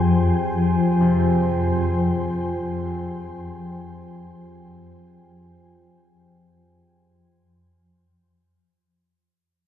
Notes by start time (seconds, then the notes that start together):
Already playing: F2 F3 F4 C5 G5 G#5
1.01 C3